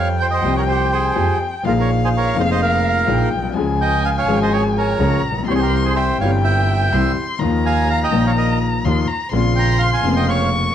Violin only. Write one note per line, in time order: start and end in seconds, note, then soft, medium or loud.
0.00 1.66 G5 medium
1.65 3.08 F5 medium
3.10 3.54 G5 medium
3.58 4.97 G#5 medium
5.01 5.45 A#5 medium
5.47 5.98 C6 medium
5.97 6.94 G5 medium
6.93 7.40 C6 medium
7.39 8.86 A#5 medium
8.84 9.09 C6 medium
9.07 9.31 A#5 medium
9.32 10.30 C6 medium
10.29 10.75 C#6 medium